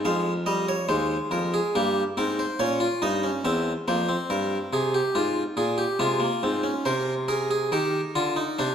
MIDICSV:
0, 0, Header, 1, 2, 480
1, 0, Start_track
1, 0, Key_signature, -4, "minor"
1, 0, Tempo, 848656
1, 32, Time_signature, 4, 2, 24, 8
1, 3391, Tempo, 863309
1, 4922, End_track
2, 0, Start_track
2, 0, Title_t, "Harpsichord"
2, 0, Program_c, 0, 6
2, 28, Note_on_c, 0, 56, 68
2, 30, Note_on_c, 0, 41, 60
2, 30, Note_on_c, 0, 77, 71
2, 178, Note_off_c, 0, 56, 0
2, 179, Note_off_c, 0, 77, 0
2, 262, Note_on_c, 0, 75, 64
2, 263, Note_on_c, 0, 55, 56
2, 382, Note_off_c, 0, 75, 0
2, 388, Note_on_c, 0, 73, 75
2, 414, Note_off_c, 0, 55, 0
2, 495, Note_off_c, 0, 41, 0
2, 501, Note_on_c, 0, 56, 56
2, 502, Note_on_c, 0, 39, 53
2, 502, Note_on_c, 0, 72, 68
2, 505, Note_off_c, 0, 73, 0
2, 652, Note_off_c, 0, 39, 0
2, 652, Note_off_c, 0, 72, 0
2, 742, Note_on_c, 0, 41, 56
2, 744, Note_on_c, 0, 70, 63
2, 862, Note_off_c, 0, 70, 0
2, 870, Note_on_c, 0, 68, 77
2, 892, Note_off_c, 0, 41, 0
2, 968, Note_off_c, 0, 56, 0
2, 985, Note_off_c, 0, 68, 0
2, 992, Note_on_c, 0, 43, 60
2, 992, Note_on_c, 0, 58, 60
2, 993, Note_on_c, 0, 67, 67
2, 1140, Note_off_c, 0, 43, 0
2, 1140, Note_off_c, 0, 58, 0
2, 1140, Note_off_c, 0, 67, 0
2, 1229, Note_on_c, 0, 60, 62
2, 1231, Note_on_c, 0, 44, 51
2, 1232, Note_on_c, 0, 70, 70
2, 1346, Note_off_c, 0, 70, 0
2, 1353, Note_on_c, 0, 72, 68
2, 1377, Note_off_c, 0, 60, 0
2, 1378, Note_off_c, 0, 44, 0
2, 1466, Note_off_c, 0, 72, 0
2, 1468, Note_on_c, 0, 46, 59
2, 1468, Note_on_c, 0, 73, 73
2, 1469, Note_on_c, 0, 61, 56
2, 1584, Note_off_c, 0, 61, 0
2, 1585, Note_on_c, 0, 65, 54
2, 1616, Note_off_c, 0, 46, 0
2, 1616, Note_off_c, 0, 73, 0
2, 1702, Note_off_c, 0, 65, 0
2, 1708, Note_on_c, 0, 63, 61
2, 1709, Note_on_c, 0, 43, 62
2, 1710, Note_on_c, 0, 75, 76
2, 1823, Note_off_c, 0, 63, 0
2, 1829, Note_on_c, 0, 61, 60
2, 1857, Note_off_c, 0, 43, 0
2, 1858, Note_off_c, 0, 75, 0
2, 1945, Note_off_c, 0, 61, 0
2, 1949, Note_on_c, 0, 40, 68
2, 1950, Note_on_c, 0, 76, 85
2, 1951, Note_on_c, 0, 60, 67
2, 2097, Note_off_c, 0, 40, 0
2, 2099, Note_off_c, 0, 60, 0
2, 2099, Note_off_c, 0, 76, 0
2, 2193, Note_on_c, 0, 58, 60
2, 2194, Note_on_c, 0, 72, 71
2, 2195, Note_on_c, 0, 41, 65
2, 2307, Note_off_c, 0, 58, 0
2, 2311, Note_on_c, 0, 60, 65
2, 2341, Note_off_c, 0, 72, 0
2, 2342, Note_off_c, 0, 41, 0
2, 2432, Note_on_c, 0, 70, 69
2, 2433, Note_on_c, 0, 43, 60
2, 2580, Note_off_c, 0, 43, 0
2, 2580, Note_off_c, 0, 70, 0
2, 2674, Note_on_c, 0, 48, 66
2, 2677, Note_on_c, 0, 68, 75
2, 2789, Note_off_c, 0, 68, 0
2, 2796, Note_on_c, 0, 67, 73
2, 2821, Note_off_c, 0, 48, 0
2, 2909, Note_off_c, 0, 67, 0
2, 2914, Note_on_c, 0, 65, 69
2, 2916, Note_on_c, 0, 44, 66
2, 3061, Note_off_c, 0, 65, 0
2, 3063, Note_off_c, 0, 44, 0
2, 3150, Note_on_c, 0, 46, 64
2, 3152, Note_on_c, 0, 68, 73
2, 3267, Note_off_c, 0, 68, 0
2, 3268, Note_on_c, 0, 67, 66
2, 3299, Note_off_c, 0, 46, 0
2, 3369, Note_off_c, 0, 60, 0
2, 3386, Note_off_c, 0, 67, 0
2, 3390, Note_on_c, 0, 56, 57
2, 3391, Note_on_c, 0, 65, 70
2, 3393, Note_on_c, 0, 48, 61
2, 3504, Note_on_c, 0, 58, 54
2, 3506, Note_off_c, 0, 56, 0
2, 3540, Note_off_c, 0, 48, 0
2, 3623, Note_off_c, 0, 58, 0
2, 3633, Note_on_c, 0, 44, 58
2, 3635, Note_on_c, 0, 60, 59
2, 3746, Note_on_c, 0, 61, 62
2, 3748, Note_off_c, 0, 60, 0
2, 3781, Note_off_c, 0, 44, 0
2, 3855, Note_off_c, 0, 65, 0
2, 3864, Note_off_c, 0, 61, 0
2, 3868, Note_on_c, 0, 72, 93
2, 3870, Note_on_c, 0, 48, 68
2, 3872, Note_on_c, 0, 70, 66
2, 4017, Note_off_c, 0, 72, 0
2, 4020, Note_off_c, 0, 70, 0
2, 4107, Note_on_c, 0, 68, 64
2, 4107, Note_on_c, 0, 70, 82
2, 4224, Note_off_c, 0, 68, 0
2, 4225, Note_off_c, 0, 70, 0
2, 4231, Note_on_c, 0, 68, 74
2, 4336, Note_off_c, 0, 48, 0
2, 4347, Note_off_c, 0, 68, 0
2, 4350, Note_on_c, 0, 51, 67
2, 4351, Note_on_c, 0, 70, 53
2, 4354, Note_on_c, 0, 67, 72
2, 4499, Note_off_c, 0, 51, 0
2, 4502, Note_off_c, 0, 67, 0
2, 4592, Note_on_c, 0, 50, 66
2, 4592, Note_on_c, 0, 65, 73
2, 4707, Note_off_c, 0, 65, 0
2, 4708, Note_on_c, 0, 63, 75
2, 4740, Note_off_c, 0, 50, 0
2, 4816, Note_off_c, 0, 70, 0
2, 4825, Note_off_c, 0, 63, 0
2, 4831, Note_on_c, 0, 62, 81
2, 4834, Note_on_c, 0, 48, 68
2, 4834, Note_on_c, 0, 72, 67
2, 4922, Note_off_c, 0, 48, 0
2, 4922, Note_off_c, 0, 62, 0
2, 4922, Note_off_c, 0, 72, 0
2, 4922, End_track
0, 0, End_of_file